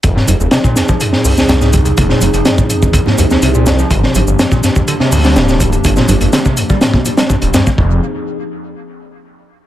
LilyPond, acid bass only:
\new Staff \with { instrumentName = "Acid bass" } { \clef bass \time 4/4 \key f \dorian \tempo 4 = 124 f,16 aes,16 f,16 ees,16 c16 bes,16 ees,16 f16 f,16 bes,16 f,16 ees,16 f,16 aes,16 f,16 ees,16 | c16 bes,16 ees,16 f16 f,16 bes,16 f,16 ees,16 f,16 aes,16 f,16 ees,16 c16 bes,16 ees,16 f16 | g,16 c16 g,16 f,16 g,16 bes,16 g,16 f,16 d16 c16 f,16 g16 g,16 c16 g,16 f,16 | g,16 bes,16 g,16 f,16 d16 c16 f,16 g16 g,16 c16 g,16 g16 g,16 g,,16 g,16 bes16 |
f,8 r2. r8 | }